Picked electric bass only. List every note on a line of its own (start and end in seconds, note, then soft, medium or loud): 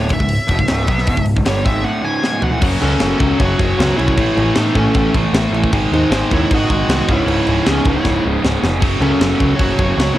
0.11 0.19 C#1 medium
0.20 0.38 C#1 medium
0.50 0.58 E1 medium
0.59 0.68 C#1 medium
0.69 0.87 C#1 medium
0.88 1.06 B1 medium
1.07 1.17 E1 medium
1.17 1.35 C#1 medium
1.36 1.45 C#1 medium
1.46 1.64 G1 medium
1.66 1.84 G#1 medium
2.62 2.74 F#1 medium
2.82 2.95 C#2 medium
3.01 3.13 F#1 medium
3.20 3.33 C#2 loud
3.40 3.52 F#1 loud
3.59 3.72 F#1 medium
3.79 3.91 C#2 loud
3.98 4.18 C2 medium
4.18 4.30 A1 loud
4.37 4.49 A1 loud
4.57 4.69 A2 medium
4.75 4.87 A1 medium
4.95 5.07 A1 loud
5.14 5.26 A1 medium
5.33 5.45 A1 loud
5.51 5.64 A1 medium
5.73 5.85 G#1 loud
5.92 6.04 D#2 medium
6.10 6.22 G#1 loud
6.32 6.43 D#2 medium
6.51 6.63 G#1 loud
6.69 6.81 G#1 loud
6.88 7.00 C2 loud
7.09 7.20 C#1 loud
7.26 7.39 C#1 medium
7.47 7.59 C#1 loud
7.67 7.78 C#2 medium
7.85 7.97 C#1 medium
8.05 8.17 C#1 loud
8.25 8.37 C#1 medium
8.44 8.56 C#1 medium
8.63 8.82 F1 medium
8.82 8.94 F#1 medium
9.00 9.13 C#2 loud
9.20 9.32 F#1 loud
9.40 9.52 C#2 medium
9.60 9.71 F#1 loud
9.78 9.90 F#1 medium
9.97 10.09 C#2 loud